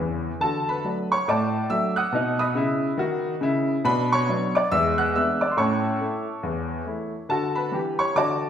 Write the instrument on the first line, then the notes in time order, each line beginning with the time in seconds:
upright piano
Already playing: E2 E3 E4 C#5 E5
0.41 D3 F#4 A4 A5
0.69 B4 B5
0.84 F#3 A3 D4
1.12 C#5 C#6
1.28 A2 D5 A5 D6
1.70 F#3 A3 D4 E5 E6
1.96 F#5 D#6 F#6
2.12 B2 D#4
2.39 D#5 B5 D#6
2.55 C#3 E4
2.97 D#3 F#4
3.41 C#3 E4
3.85 B2 D4 B4 B5
4.12 C#5 C#6
4.29 F#3 B3 D4
4.55 D5 D6
4.72 E2 G#3 E5 E6
4.98 F#5 F#6
5.15 G#3 B3 D4 E5 E6
5.41 D5 D6
5.51 C6
5.57 A2 C#4 C#5 A5 C#6
6.01 A3 E4
6.43 E2
6.86 A3 E4
7.29 D3 F#4 A4 A5
7.55 B4 B5
7.72 E3 G4
7.99 C#5 C#6
8.15 D3 F#4 D5 A5 D6